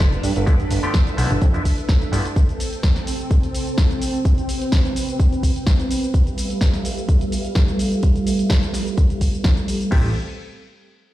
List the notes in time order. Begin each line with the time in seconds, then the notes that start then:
Already playing: D4 A4 B4 F6
0.00 F1, shaker
0.13 closed hi-hat, tambourine, shaker
0.23 G2, open hi-hat, tambourine, shaker
0.36 G1, closed hi-hat, tambourine, shaker
0.46 D3 F3 A3 B3 E4 E5, kick, closed hi-hat, tambourine, shaker
0.59 closed hi-hat, tambourine, shaker
0.71 G1, open hi-hat, tambourine, shaker
0.83 D3 F3 A3 B3 G4, closed hi-hat, tambourine, shaker
0.94 kick, snare, closed hi-hat, shaker
1.07 closed hi-hat, shaker
1.17 B1 D3 F3 A3 B3 E4, open hi-hat, tambourine, shaker
1.31 G1, closed hi-hat, tambourine, shaker
1.42 F2, kick, closed hi-hat, tambourine, shaker
1.54 D3 F3 A3 B3 E4, closed hi-hat, shaker
1.65 kick, open hi-hat, shaker
1.78 closed hi-hat, tambourine, shaker
1.89 kick, snare, closed hi-hat, shaker
2.02 closed hi-hat, shaker
2.12 G2 D3 F3 A3 B3 E4, open hi-hat, shaker
2.25 closed hi-hat, tambourine, shaker
2.36 C4 G5, kick, closed hi-hat, shaker
2.49 closed hi-hat, shaker
2.60 open hi-hat, tambourine, shaker
2.73 closed hi-hat, tambourine, shaker
2.83 kick, snare, closed hi-hat, shaker
2.96 snare, closed hi-hat, shaker
3.07 open hi-hat, tambourine, shaker
3.20 closed hi-hat, shaker
3.30 kick, closed hi-hat, tambourine, shaker
3.43 closed hi-hat, shaker
3.54 open hi-hat, tambourine, shaker
3.67 closed hi-hat, tambourine, shaker
3.78 kick, snare, closed hi-hat, shaker
3.91 closed hi-hat, shaker
4.02 open hi-hat, shaker
4.14 closed hi-hat, shaker
4.25 B4, kick, closed hi-hat, shaker
4.38 closed hi-hat, shaker
4.49 open hi-hat, tambourine, shaker
4.62 closed hi-hat, tambourine, shaker
4.72 kick, snare, closed hi-hat, shaker
4.85 closed hi-hat, shaker
4.96 open hi-hat, tambourine, shaker
5.09 closed hi-hat, shaker
5.20 kick, closed hi-hat, shaker
5.33 closed hi-hat, shaker
5.43 kick, open hi-hat, shaker
5.56 closed hi-hat, shaker
5.67 kick, snare, closed hi-hat, shaker
5.80 closed hi-hat, shaker
5.91 open hi-hat, shaker
6.03 closed hi-hat, shaker
6.14 G3 A4 E5 F5, kick, closed hi-hat, shaker
6.27 closed hi-hat, shaker
6.38 open hi-hat, shaker
6.50 closed hi-hat, shaker
6.61 kick, snare, closed hi-hat, shaker
6.73 snare, closed hi-hat, shaker
6.85 open hi-hat, shaker
6.98 closed hi-hat, shaker
7.09 kick, closed hi-hat, shaker
7.21 closed hi-hat, shaker
7.32 open hi-hat, shaker
7.45 closed hi-hat, shaker
7.55 kick, snare, closed hi-hat, shaker
7.68 closed hi-hat, shaker
7.79 open hi-hat, shaker
7.92 closed hi-hat, shaker
8.03 kick, closed hi-hat, shaker
8.16 closed hi-hat, shaker
8.27 open hi-hat, shaker
8.39 closed hi-hat, shaker
8.50 kick, snare, closed hi-hat, shaker
8.63 closed hi-hat, shaker
8.74 snare, open hi-hat, shaker
8.87 closed hi-hat, shaker
8.98 kick, closed hi-hat, shaker
9.10 closed hi-hat, shaker
9.21 kick, open hi-hat, shaker
9.34 closed hi-hat, shaker
9.44 kick, snare, closed hi-hat, shaker
9.57 closed hi-hat, shaker
9.68 open hi-hat, shaker
9.81 closed hi-hat, shaker
9.90 A1 C3 G3 A3 B3 C4 E4 A4 G5, kick, crash